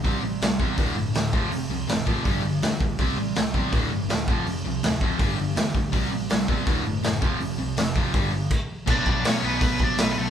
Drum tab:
CC |--------|--------|--------|--------|
HH |o-o-o-o-|o-o-o-o-|o-o-o-o-|o-o-o-o-|
SD |--o---o-|--o---o-|--o---o-|--o---o-|
BD |o--oo--o|---oo--o|o--oo--o|---oo--o|

CC |--------|------x-|x-------|
HH |o-o-o-o-|o-o-o---|--o-o-o-|
SD |--o---o-|--o-----|--o---o-|
BD |o--oo--o|---oo-o-|oo--oo--|